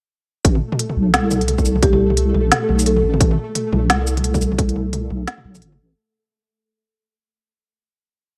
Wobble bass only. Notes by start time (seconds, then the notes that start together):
0.45 A1
0.96 B1
1.14 C2
2.34 B1
2.69 B1
3.03 A1
3.21 A1
3.72 B1
3.89 C2
5.10 B1
5.45 B1
5.62 G1
5.79 A1